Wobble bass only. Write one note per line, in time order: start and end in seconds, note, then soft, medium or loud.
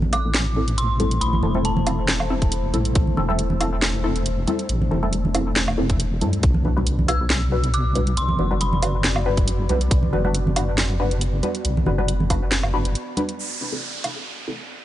0.00 1.20 A1 loud
1.22 1.42 A1 loud
1.43 2.72 E1 loud
2.74 2.94 A1 medium
2.96 3.16 A1 loud
3.17 4.46 E1 loud
4.69 4.90 A1 loud
4.91 5.78 E1 loud
5.78 6.23 E1 medium
6.22 6.42 F#2 medium
6.43 8.16 B1 loud
8.17 8.37 B1 loud
8.39 9.68 F#1 loud
9.69 9.90 B1 loud
9.91 10.11 B1 loud
10.13 11.42 F#1 loud
11.65 11.85 B1 loud
11.87 12.96 F#1 loud